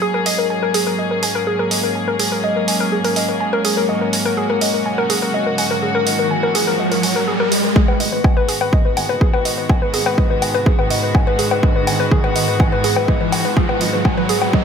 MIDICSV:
0, 0, Header, 1, 7, 480
1, 0, Start_track
1, 0, Key_signature, 5, "minor"
1, 0, Tempo, 483871
1, 18, Time_signature, 4, 2, 24, 8
1, 14526, End_track
2, 0, Start_track
2, 0, Title_t, "Synth pluck"
2, 0, Program_c, 0, 84
2, 18, Note_on_c, 0, 68, 102
2, 113, Note_off_c, 0, 68, 0
2, 141, Note_on_c, 0, 70, 98
2, 231, Note_off_c, 0, 70, 0
2, 258, Note_on_c, 0, 75, 72
2, 353, Note_off_c, 0, 75, 0
2, 381, Note_on_c, 0, 70, 73
2, 471, Note_off_c, 0, 70, 0
2, 498, Note_on_c, 0, 80, 79
2, 536, Note_off_c, 0, 80, 0
2, 621, Note_on_c, 0, 70, 94
2, 657, Note_off_c, 0, 70, 0
2, 738, Note_on_c, 0, 68, 96
2, 833, Note_off_c, 0, 68, 0
2, 860, Note_on_c, 0, 70, 96
2, 951, Note_off_c, 0, 70, 0
2, 978, Note_on_c, 0, 75, 77
2, 1073, Note_off_c, 0, 75, 0
2, 1101, Note_on_c, 0, 70, 75
2, 1191, Note_off_c, 0, 70, 0
2, 1218, Note_on_c, 0, 80, 74
2, 1256, Note_off_c, 0, 80, 0
2, 1340, Note_on_c, 0, 70, 96
2, 1377, Note_off_c, 0, 70, 0
2, 1457, Note_on_c, 0, 68, 96
2, 1553, Note_off_c, 0, 68, 0
2, 1580, Note_on_c, 0, 70, 100
2, 1671, Note_off_c, 0, 70, 0
2, 1697, Note_on_c, 0, 75, 75
2, 1793, Note_off_c, 0, 75, 0
2, 1820, Note_on_c, 0, 70, 73
2, 1911, Note_off_c, 0, 70, 0
2, 1937, Note_on_c, 0, 80, 82
2, 1976, Note_off_c, 0, 80, 0
2, 2060, Note_on_c, 0, 70, 96
2, 2097, Note_off_c, 0, 70, 0
2, 2178, Note_on_c, 0, 68, 96
2, 2273, Note_off_c, 0, 68, 0
2, 2301, Note_on_c, 0, 70, 97
2, 2391, Note_off_c, 0, 70, 0
2, 2418, Note_on_c, 0, 75, 81
2, 2513, Note_off_c, 0, 75, 0
2, 2541, Note_on_c, 0, 70, 71
2, 2631, Note_off_c, 0, 70, 0
2, 2658, Note_on_c, 0, 80, 75
2, 2696, Note_off_c, 0, 80, 0
2, 2781, Note_on_c, 0, 70, 96
2, 2817, Note_off_c, 0, 70, 0
2, 2898, Note_on_c, 0, 68, 96
2, 2993, Note_off_c, 0, 68, 0
2, 3021, Note_on_c, 0, 70, 97
2, 3111, Note_off_c, 0, 70, 0
2, 3138, Note_on_c, 0, 75, 74
2, 3233, Note_off_c, 0, 75, 0
2, 3261, Note_on_c, 0, 70, 75
2, 3351, Note_off_c, 0, 70, 0
2, 3378, Note_on_c, 0, 80, 78
2, 3416, Note_off_c, 0, 80, 0
2, 3501, Note_on_c, 0, 70, 103
2, 3537, Note_off_c, 0, 70, 0
2, 3618, Note_on_c, 0, 68, 102
2, 3713, Note_off_c, 0, 68, 0
2, 3741, Note_on_c, 0, 70, 98
2, 3831, Note_off_c, 0, 70, 0
2, 3858, Note_on_c, 0, 75, 83
2, 3953, Note_off_c, 0, 75, 0
2, 3981, Note_on_c, 0, 70, 73
2, 4071, Note_off_c, 0, 70, 0
2, 4098, Note_on_c, 0, 80, 74
2, 4136, Note_off_c, 0, 80, 0
2, 4221, Note_on_c, 0, 70, 100
2, 4257, Note_off_c, 0, 70, 0
2, 4338, Note_on_c, 0, 68, 97
2, 4433, Note_off_c, 0, 68, 0
2, 4461, Note_on_c, 0, 70, 97
2, 4551, Note_off_c, 0, 70, 0
2, 4578, Note_on_c, 0, 75, 74
2, 4673, Note_off_c, 0, 75, 0
2, 4701, Note_on_c, 0, 70, 74
2, 4791, Note_off_c, 0, 70, 0
2, 4818, Note_on_c, 0, 80, 78
2, 4856, Note_off_c, 0, 80, 0
2, 4941, Note_on_c, 0, 70, 99
2, 4977, Note_off_c, 0, 70, 0
2, 5058, Note_on_c, 0, 68, 96
2, 5153, Note_off_c, 0, 68, 0
2, 5181, Note_on_c, 0, 70, 93
2, 5271, Note_off_c, 0, 70, 0
2, 5298, Note_on_c, 0, 75, 80
2, 5393, Note_off_c, 0, 75, 0
2, 5421, Note_on_c, 0, 70, 75
2, 5511, Note_off_c, 0, 70, 0
2, 5538, Note_on_c, 0, 80, 77
2, 5576, Note_off_c, 0, 80, 0
2, 5661, Note_on_c, 0, 70, 101
2, 5697, Note_off_c, 0, 70, 0
2, 5777, Note_on_c, 0, 68, 99
2, 5873, Note_off_c, 0, 68, 0
2, 5900, Note_on_c, 0, 70, 97
2, 5991, Note_off_c, 0, 70, 0
2, 6018, Note_on_c, 0, 75, 73
2, 6113, Note_off_c, 0, 75, 0
2, 6141, Note_on_c, 0, 70, 74
2, 6231, Note_off_c, 0, 70, 0
2, 6258, Note_on_c, 0, 80, 83
2, 6296, Note_off_c, 0, 80, 0
2, 6381, Note_on_c, 0, 70, 98
2, 6417, Note_off_c, 0, 70, 0
2, 6498, Note_on_c, 0, 68, 102
2, 6593, Note_off_c, 0, 68, 0
2, 6620, Note_on_c, 0, 70, 97
2, 6711, Note_off_c, 0, 70, 0
2, 6738, Note_on_c, 0, 75, 78
2, 6833, Note_off_c, 0, 75, 0
2, 6860, Note_on_c, 0, 70, 74
2, 6951, Note_off_c, 0, 70, 0
2, 6977, Note_on_c, 0, 80, 74
2, 7016, Note_off_c, 0, 80, 0
2, 7101, Note_on_c, 0, 70, 95
2, 7137, Note_off_c, 0, 70, 0
2, 7217, Note_on_c, 0, 68, 96
2, 7313, Note_off_c, 0, 68, 0
2, 7340, Note_on_c, 0, 70, 100
2, 7431, Note_off_c, 0, 70, 0
2, 7458, Note_on_c, 0, 75, 75
2, 7553, Note_off_c, 0, 75, 0
2, 7581, Note_on_c, 0, 70, 74
2, 7671, Note_off_c, 0, 70, 0
2, 7697, Note_on_c, 0, 68, 102
2, 7793, Note_off_c, 0, 68, 0
2, 7820, Note_on_c, 0, 71, 97
2, 7911, Note_off_c, 0, 71, 0
2, 7937, Note_on_c, 0, 75, 76
2, 8033, Note_off_c, 0, 75, 0
2, 8060, Note_on_c, 0, 71, 76
2, 8151, Note_off_c, 0, 71, 0
2, 8177, Note_on_c, 0, 80, 78
2, 8215, Note_off_c, 0, 80, 0
2, 8300, Note_on_c, 0, 71, 97
2, 8337, Note_off_c, 0, 71, 0
2, 8417, Note_on_c, 0, 68, 103
2, 8513, Note_off_c, 0, 68, 0
2, 8541, Note_on_c, 0, 71, 98
2, 8631, Note_off_c, 0, 71, 0
2, 8658, Note_on_c, 0, 75, 80
2, 8753, Note_off_c, 0, 75, 0
2, 8781, Note_on_c, 0, 71, 74
2, 8871, Note_off_c, 0, 71, 0
2, 8898, Note_on_c, 0, 80, 74
2, 8936, Note_off_c, 0, 80, 0
2, 9021, Note_on_c, 0, 71, 98
2, 9057, Note_off_c, 0, 71, 0
2, 9138, Note_on_c, 0, 68, 100
2, 9233, Note_off_c, 0, 68, 0
2, 9260, Note_on_c, 0, 71, 101
2, 9351, Note_off_c, 0, 71, 0
2, 9378, Note_on_c, 0, 75, 77
2, 9473, Note_off_c, 0, 75, 0
2, 9501, Note_on_c, 0, 71, 74
2, 9591, Note_off_c, 0, 71, 0
2, 9618, Note_on_c, 0, 80, 81
2, 9656, Note_off_c, 0, 80, 0
2, 9741, Note_on_c, 0, 71, 102
2, 9777, Note_off_c, 0, 71, 0
2, 9858, Note_on_c, 0, 68, 100
2, 9953, Note_off_c, 0, 68, 0
2, 9981, Note_on_c, 0, 71, 101
2, 10071, Note_off_c, 0, 71, 0
2, 10098, Note_on_c, 0, 75, 78
2, 10193, Note_off_c, 0, 75, 0
2, 10221, Note_on_c, 0, 71, 73
2, 10311, Note_off_c, 0, 71, 0
2, 10338, Note_on_c, 0, 80, 74
2, 10376, Note_off_c, 0, 80, 0
2, 10461, Note_on_c, 0, 71, 101
2, 10497, Note_off_c, 0, 71, 0
2, 10578, Note_on_c, 0, 68, 100
2, 10673, Note_off_c, 0, 68, 0
2, 10701, Note_on_c, 0, 71, 100
2, 10791, Note_off_c, 0, 71, 0
2, 10818, Note_on_c, 0, 75, 76
2, 10913, Note_off_c, 0, 75, 0
2, 10941, Note_on_c, 0, 71, 75
2, 11031, Note_off_c, 0, 71, 0
2, 11058, Note_on_c, 0, 80, 81
2, 11096, Note_off_c, 0, 80, 0
2, 11181, Note_on_c, 0, 71, 105
2, 11217, Note_off_c, 0, 71, 0
2, 11298, Note_on_c, 0, 68, 101
2, 11393, Note_off_c, 0, 68, 0
2, 11421, Note_on_c, 0, 71, 100
2, 11511, Note_off_c, 0, 71, 0
2, 11538, Note_on_c, 0, 75, 83
2, 11633, Note_off_c, 0, 75, 0
2, 11661, Note_on_c, 0, 71, 77
2, 11751, Note_off_c, 0, 71, 0
2, 11778, Note_on_c, 0, 80, 74
2, 11816, Note_off_c, 0, 80, 0
2, 11901, Note_on_c, 0, 71, 97
2, 11937, Note_off_c, 0, 71, 0
2, 12018, Note_on_c, 0, 68, 100
2, 12113, Note_off_c, 0, 68, 0
2, 12141, Note_on_c, 0, 71, 101
2, 12231, Note_off_c, 0, 71, 0
2, 12258, Note_on_c, 0, 75, 77
2, 12353, Note_off_c, 0, 75, 0
2, 12381, Note_on_c, 0, 71, 75
2, 12471, Note_off_c, 0, 71, 0
2, 12498, Note_on_c, 0, 80, 83
2, 12536, Note_off_c, 0, 80, 0
2, 12621, Note_on_c, 0, 71, 98
2, 12657, Note_off_c, 0, 71, 0
2, 12738, Note_on_c, 0, 68, 100
2, 12833, Note_off_c, 0, 68, 0
2, 12861, Note_on_c, 0, 71, 99
2, 12952, Note_off_c, 0, 71, 0
2, 12978, Note_on_c, 0, 75, 82
2, 13073, Note_off_c, 0, 75, 0
2, 13101, Note_on_c, 0, 71, 79
2, 13192, Note_off_c, 0, 71, 0
2, 13218, Note_on_c, 0, 80, 77
2, 13256, Note_off_c, 0, 80, 0
2, 13341, Note_on_c, 0, 71, 101
2, 13377, Note_off_c, 0, 71, 0
2, 13458, Note_on_c, 0, 68, 104
2, 13553, Note_off_c, 0, 68, 0
2, 13581, Note_on_c, 0, 71, 101
2, 13672, Note_off_c, 0, 71, 0
2, 13698, Note_on_c, 0, 75, 75
2, 13793, Note_off_c, 0, 75, 0
2, 13821, Note_on_c, 0, 71, 76
2, 13912, Note_off_c, 0, 71, 0
2, 13939, Note_on_c, 0, 80, 80
2, 13976, Note_off_c, 0, 80, 0
2, 14061, Note_on_c, 0, 71, 100
2, 14097, Note_off_c, 0, 71, 0
2, 14178, Note_on_c, 0, 68, 102
2, 14273, Note_off_c, 0, 68, 0
2, 14301, Note_on_c, 0, 71, 98
2, 14391, Note_off_c, 0, 71, 0
2, 14418, Note_on_c, 0, 75, 83
2, 14513, Note_off_c, 0, 75, 0
2, 14526, End_track
3, 0, Start_track
3, 0, Title_t, "String section"
3, 0, Program_c, 1, 48
3, 0, Note_on_c, 1, 54, 72
3, 0, Note_on_c, 1, 68, 78
3, 18, Note_on_c, 1, 58, 65
3, 18, Note_on_c, 1, 61, 64
3, 19, Note_on_c, 1, 44, 70
3, 3818, Note_off_c, 1, 68, 0
3, 3857, Note_on_c, 1, 66, 80
3, 7658, Note_off_c, 1, 54, 0
3, 7658, Note_off_c, 1, 58, 0
3, 7658, Note_off_c, 1, 61, 0
3, 7659, Note_off_c, 1, 44, 0
3, 7659, Note_off_c, 1, 66, 0
3, 7698, Note_on_c, 1, 51, 76
3, 7698, Note_on_c, 1, 56, 67
3, 7698, Note_on_c, 1, 59, 66
3, 7698, Note_on_c, 1, 66, 79
3, 14526, Note_off_c, 1, 51, 0
3, 14526, Note_off_c, 1, 56, 0
3, 14526, Note_off_c, 1, 59, 0
3, 14526, Note_off_c, 1, 66, 0
3, 14526, End_track
4, 0, Start_track
4, 0, Title_t, "Synth drone"
4, 0, Program_c, 2, 95
4, 7698, Note_on_c, 2, 44, 73
4, 14526, Note_off_c, 2, 44, 0
4, 14526, End_track
5, 0, Start_track
5, 0, Title_t, "Detuned saw bass"
5, 0, Program_c, 3, 39
5, 7937, Note_on_c, 3, 32, 91
5, 8019, Note_off_c, 3, 32, 0
5, 8061, Note_on_c, 3, 32, 80
5, 8138, Note_off_c, 3, 32, 0
5, 8301, Note_on_c, 3, 32, 75
5, 8378, Note_off_c, 3, 32, 0
5, 8540, Note_on_c, 3, 32, 78
5, 8618, Note_off_c, 3, 32, 0
5, 8897, Note_on_c, 3, 32, 90
5, 8979, Note_off_c, 3, 32, 0
5, 9021, Note_on_c, 3, 30, 78
5, 9098, Note_off_c, 3, 30, 0
5, 9261, Note_on_c, 3, 32, 74
5, 9338, Note_off_c, 3, 32, 0
5, 9500, Note_on_c, 3, 32, 80
5, 9578, Note_off_c, 3, 32, 0
5, 9858, Note_on_c, 3, 32, 92
5, 9939, Note_off_c, 3, 32, 0
5, 9980, Note_on_c, 3, 32, 80
5, 10058, Note_off_c, 3, 32, 0
5, 10220, Note_on_c, 3, 32, 77
5, 10298, Note_off_c, 3, 32, 0
5, 10461, Note_on_c, 3, 32, 79
5, 10538, Note_off_c, 3, 32, 0
5, 10817, Note_on_c, 3, 32, 90
5, 10899, Note_off_c, 3, 32, 0
5, 10940, Note_on_c, 3, 30, 75
5, 11018, Note_off_c, 3, 30, 0
5, 11180, Note_on_c, 3, 32, 74
5, 11258, Note_off_c, 3, 32, 0
5, 11420, Note_on_c, 3, 32, 81
5, 11498, Note_off_c, 3, 32, 0
5, 11777, Note_on_c, 3, 32, 92
5, 11859, Note_off_c, 3, 32, 0
5, 11901, Note_on_c, 3, 32, 81
5, 11978, Note_off_c, 3, 32, 0
5, 12141, Note_on_c, 3, 32, 77
5, 12218, Note_off_c, 3, 32, 0
5, 12380, Note_on_c, 3, 32, 80
5, 12458, Note_off_c, 3, 32, 0
5, 12738, Note_on_c, 3, 32, 93
5, 12819, Note_off_c, 3, 32, 0
5, 12861, Note_on_c, 3, 30, 77
5, 12938, Note_off_c, 3, 30, 0
5, 13101, Note_on_c, 3, 32, 73
5, 13178, Note_off_c, 3, 32, 0
5, 13341, Note_on_c, 3, 32, 79
5, 13418, Note_off_c, 3, 32, 0
5, 13698, Note_on_c, 3, 32, 93
5, 13779, Note_off_c, 3, 32, 0
5, 13821, Note_on_c, 3, 32, 82
5, 13898, Note_off_c, 3, 32, 0
5, 14060, Note_on_c, 3, 32, 77
5, 14138, Note_off_c, 3, 32, 0
5, 14300, Note_on_c, 3, 32, 81
5, 14378, Note_off_c, 3, 32, 0
5, 14526, End_track
6, 0, Start_track
6, 0, Title_t, "Riser"
6, 0, Program_c, 4, 103
6, 3858, Note_on_c, 4, 60, 72
6, 7698, Note_off_c, 4, 60, 0
6, 7698, Note_on_c, 4, 60, 78
6, 14526, Note_off_c, 4, 60, 0
6, 14526, End_track
7, 0, Start_track
7, 0, Title_t, "Drums"
7, 258, Note_on_c, 9, 46, 96
7, 357, Note_off_c, 9, 46, 0
7, 737, Note_on_c, 9, 46, 96
7, 837, Note_off_c, 9, 46, 0
7, 1217, Note_on_c, 9, 46, 99
7, 1317, Note_off_c, 9, 46, 0
7, 1698, Note_on_c, 9, 46, 97
7, 1797, Note_off_c, 9, 46, 0
7, 2177, Note_on_c, 9, 46, 92
7, 2276, Note_off_c, 9, 46, 0
7, 2657, Note_on_c, 9, 46, 91
7, 2757, Note_off_c, 9, 46, 0
7, 3020, Note_on_c, 9, 46, 54
7, 3120, Note_off_c, 9, 46, 0
7, 3137, Note_on_c, 9, 46, 92
7, 3236, Note_off_c, 9, 46, 0
7, 3617, Note_on_c, 9, 46, 95
7, 3717, Note_off_c, 9, 46, 0
7, 4097, Note_on_c, 9, 46, 90
7, 4197, Note_off_c, 9, 46, 0
7, 4577, Note_on_c, 9, 46, 90
7, 4676, Note_off_c, 9, 46, 0
7, 5057, Note_on_c, 9, 46, 94
7, 5156, Note_off_c, 9, 46, 0
7, 5537, Note_on_c, 9, 46, 91
7, 5636, Note_off_c, 9, 46, 0
7, 6017, Note_on_c, 9, 46, 94
7, 6117, Note_off_c, 9, 46, 0
7, 6497, Note_on_c, 9, 46, 95
7, 6597, Note_off_c, 9, 46, 0
7, 6860, Note_on_c, 9, 46, 53
7, 6959, Note_off_c, 9, 46, 0
7, 6977, Note_on_c, 9, 46, 94
7, 7076, Note_off_c, 9, 46, 0
7, 7457, Note_on_c, 9, 46, 96
7, 7556, Note_off_c, 9, 46, 0
7, 7698, Note_on_c, 9, 36, 112
7, 7797, Note_off_c, 9, 36, 0
7, 7820, Note_on_c, 9, 77, 46
7, 7919, Note_off_c, 9, 77, 0
7, 7937, Note_on_c, 9, 46, 99
7, 8037, Note_off_c, 9, 46, 0
7, 8178, Note_on_c, 9, 36, 113
7, 8178, Note_on_c, 9, 77, 49
7, 8277, Note_off_c, 9, 36, 0
7, 8277, Note_off_c, 9, 77, 0
7, 8417, Note_on_c, 9, 46, 100
7, 8517, Note_off_c, 9, 46, 0
7, 8541, Note_on_c, 9, 77, 47
7, 8640, Note_off_c, 9, 77, 0
7, 8658, Note_on_c, 9, 36, 112
7, 8757, Note_off_c, 9, 36, 0
7, 8897, Note_on_c, 9, 46, 99
7, 8897, Note_on_c, 9, 77, 48
7, 8997, Note_off_c, 9, 46, 0
7, 8997, Note_off_c, 9, 77, 0
7, 9138, Note_on_c, 9, 36, 112
7, 9237, Note_off_c, 9, 36, 0
7, 9260, Note_on_c, 9, 77, 49
7, 9360, Note_off_c, 9, 77, 0
7, 9377, Note_on_c, 9, 46, 101
7, 9476, Note_off_c, 9, 46, 0
7, 9617, Note_on_c, 9, 77, 45
7, 9618, Note_on_c, 9, 36, 115
7, 9717, Note_off_c, 9, 36, 0
7, 9717, Note_off_c, 9, 77, 0
7, 9857, Note_on_c, 9, 46, 103
7, 9957, Note_off_c, 9, 46, 0
7, 9981, Note_on_c, 9, 77, 50
7, 10080, Note_off_c, 9, 77, 0
7, 10098, Note_on_c, 9, 36, 120
7, 10197, Note_off_c, 9, 36, 0
7, 10338, Note_on_c, 9, 46, 101
7, 10338, Note_on_c, 9, 77, 48
7, 10437, Note_off_c, 9, 46, 0
7, 10437, Note_off_c, 9, 77, 0
7, 10578, Note_on_c, 9, 36, 120
7, 10677, Note_off_c, 9, 36, 0
7, 10701, Note_on_c, 9, 77, 46
7, 10800, Note_off_c, 9, 77, 0
7, 10818, Note_on_c, 9, 46, 104
7, 10917, Note_off_c, 9, 46, 0
7, 11058, Note_on_c, 9, 36, 113
7, 11058, Note_on_c, 9, 77, 50
7, 11157, Note_off_c, 9, 36, 0
7, 11157, Note_off_c, 9, 77, 0
7, 11297, Note_on_c, 9, 46, 105
7, 11397, Note_off_c, 9, 46, 0
7, 11420, Note_on_c, 9, 77, 47
7, 11520, Note_off_c, 9, 77, 0
7, 11538, Note_on_c, 9, 36, 115
7, 11637, Note_off_c, 9, 36, 0
7, 11778, Note_on_c, 9, 46, 107
7, 11778, Note_on_c, 9, 77, 51
7, 11877, Note_off_c, 9, 46, 0
7, 11877, Note_off_c, 9, 77, 0
7, 12018, Note_on_c, 9, 36, 122
7, 12117, Note_off_c, 9, 36, 0
7, 12141, Note_on_c, 9, 77, 49
7, 12240, Note_off_c, 9, 77, 0
7, 12257, Note_on_c, 9, 46, 108
7, 12357, Note_off_c, 9, 46, 0
7, 12498, Note_on_c, 9, 36, 119
7, 12498, Note_on_c, 9, 77, 49
7, 12597, Note_off_c, 9, 36, 0
7, 12597, Note_off_c, 9, 77, 0
7, 12738, Note_on_c, 9, 46, 105
7, 12837, Note_off_c, 9, 46, 0
7, 12861, Note_on_c, 9, 77, 50
7, 12960, Note_off_c, 9, 77, 0
7, 12978, Note_on_c, 9, 36, 117
7, 13077, Note_off_c, 9, 36, 0
7, 13218, Note_on_c, 9, 46, 106
7, 13218, Note_on_c, 9, 77, 49
7, 13317, Note_off_c, 9, 46, 0
7, 13317, Note_off_c, 9, 77, 0
7, 13458, Note_on_c, 9, 36, 117
7, 13557, Note_off_c, 9, 36, 0
7, 13581, Note_on_c, 9, 77, 51
7, 13680, Note_off_c, 9, 77, 0
7, 13698, Note_on_c, 9, 46, 102
7, 13797, Note_off_c, 9, 46, 0
7, 13938, Note_on_c, 9, 36, 123
7, 13938, Note_on_c, 9, 77, 53
7, 14037, Note_off_c, 9, 36, 0
7, 14037, Note_off_c, 9, 77, 0
7, 14177, Note_on_c, 9, 46, 104
7, 14277, Note_off_c, 9, 46, 0
7, 14301, Note_on_c, 9, 77, 52
7, 14400, Note_off_c, 9, 77, 0
7, 14418, Note_on_c, 9, 36, 121
7, 14517, Note_off_c, 9, 36, 0
7, 14526, End_track
0, 0, End_of_file